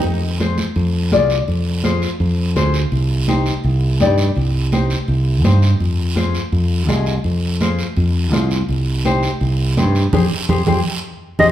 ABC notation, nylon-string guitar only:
X:1
M:4/4
L:1/8
Q:1/4=166
K:Fdor
V:1 name="Nylon-string guitar"
z2 [FAc] z3 [FAd] z | z2 [FAc] z3 [FAc] z | z2 [EGc] z3 [EGd] z | z2 [EGc] z3 [EGc] z |
z2 [FAc] z3 [FAe] z | z2 [FAc] z3 [FAc] z | z2 [EGc] z3 [EGc] z | [GAc] z [GAc] [GAc] z3 [GAc] |]